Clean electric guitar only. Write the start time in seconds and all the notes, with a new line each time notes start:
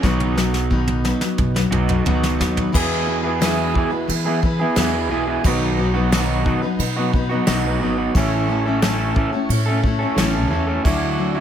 0.02 B2 F#3 B3 D#4 F#4
1.71 B2 F#3 B3 D#4 F#4
2.06 B2 F#3 B3 D#4 F#4
2.74 E2 B2 E3 B3 E4 G#4
3.23 E3 B3 E4 G#4
3.41 E2 B2 E3 B3 E4 G#4
3.75 E3 B3 E4 G#4
3.93 muted clean electric guitar stroke
4.25 E3 B3 E4 G#4
4.42 muted clean electric guitar stroke
4.60 E3 B3 E4 G#4
4.76 E2 B2 E3 B3 E4 G#4
5.09 E3 B3 E4 G#4
5.27 E3 B3 E4 G#4
5.44 B2 F#3 B3 D#4 F#4
5.94 B3 D#4 F#4
6.11 B2 F#3 B3 D#4 F#4
6.45 F#3 B3 D#4 F#4
6.63 muted clean electric guitar stroke
6.96 B3 D#4 F#4
7.13 muted clean electric guitar stroke
7.29 B3 D#4 F#4
7.46 B2 F#3 B3 D#4 F#4
7.81 F#3 B3 D#4 F#4
7.98 B3 D#4 F#4
8.15 A2 E3 A3 C#4 A4
8.65 A3 C#4 A4
8.81 A2 E3 A3 C#4 A4
9.15 E3 A3 C#4 A4
9.33 muted clean electric guitar stroke
9.66 A3 C#4 A4
9.82 muted clean electric guitar stroke
9.99 A3 C#4 A4
10.15 A2 E3 A3 C#4 A4
10.49 E3 A3 C#4 A4
10.67 A3 C#4 A4
10.84 D3 A3 E4 F#4
11.35 A3 E4 F#4